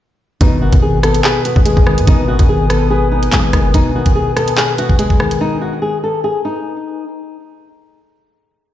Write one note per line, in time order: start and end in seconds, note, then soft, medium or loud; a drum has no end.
0.41 0.63 G#1 loud
0.41 1.45 B2 loud
0.41 0.57 D#4 loud
0.41 7.03 B4 medium
0.41 7.03 G#5 medium
0.41 7.03 D#6 medium
0.41 kick loud
0.41 closed hi-hat medium
0.62 0.72 F#1 loud
0.62 1.66 D#3 medium
0.62 0.77 F#4 medium
0.73 1.22 G#1 loud
0.73 kick loud
0.73 closed hi-hat medium
0.82 0.98 G#4 medium
1.03 1.44 B3 medium
1.03 1.19 A4 medium
1.03 cross-stick loud
1.03 closed hi-hat medium
1.14 closed hi-hat medium
1.24 1.40 G#4 medium
1.24 2.28 B4 loud
1.24 clap loud
1.45 2.49 B3 medium
1.45 1.61 F#4 medium
1.45 closed hi-hat medium
1.56 1.76 G#1 loud
1.56 kick loud
1.65 2.70 G#3 medium
1.65 2.05 G#4 medium
1.65 closed hi-hat medium
1.77 1.99 G#1 loud
1.77 kick medium
1.87 2.27 D#3 medium
1.87 cross-stick loud
1.98 2.07 G#2 loud
1.98 closed hi-hat medium
2.07 2.38 G#1 loud
2.07 3.12 B2 loud
2.07 2.23 D#4 loud
2.07 kick loud
2.07 closed hi-hat medium
2.28 3.33 D#3 medium
2.28 2.44 F#4 medium
2.39 3.29 G#1 loud
2.39 kick loud
2.39 closed hi-hat medium
2.49 2.65 G#4 medium
2.70 3.10 B3 medium
2.70 2.86 A4 medium
2.70 cross-stick loud
2.70 closed hi-hat medium
2.90 3.06 G#4 medium
2.90 3.74 B4 loud
3.11 3.74 B3 medium
3.11 3.70 D#4 medium
3.23 closed hi-hat medium
3.32 3.52 G#1 loud
3.32 3.74 G#3 medium
3.32 clap loud
3.32 closed hi-hat medium
3.53 3.73 F#1 loud
3.53 3.74 D#3 medium
3.53 kick loud
3.53 cross-stick loud
3.53 closed hi-hat medium
3.74 4.78 B2 loud
3.74 3.90 D#4 loud
3.74 kick loud
3.74 closed hi-hat medium
3.95 4.99 D#3 medium
3.95 4.11 F#4 medium
4.06 kick loud
4.06 closed hi-hat medium
4.15 4.31 G#4 medium
4.37 4.76 B3 medium
4.37 4.52 A4 medium
4.37 cross-stick loud
4.37 closed hi-hat medium
4.48 closed hi-hat medium
4.57 4.73 G#4 medium
4.57 5.62 B4 medium
4.57 clap loud
4.78 5.82 B3 medium
4.78 4.94 F#4 medium
4.78 closed hi-hat medium
4.89 kick loud
4.99 6.03 G#3 loud
4.99 5.38 G#4 medium
4.99 closed hi-hat medium
5.10 kick medium
5.20 6.24 D#3 medium
5.20 cross-stick loud
5.31 closed hi-hat medium
5.41 5.57 D#4 loud
5.61 5.77 F#4 medium
5.82 5.98 G#4 medium
6.03 6.19 A4 medium
6.24 6.40 G#4 medium
6.45 7.04 D#4 medium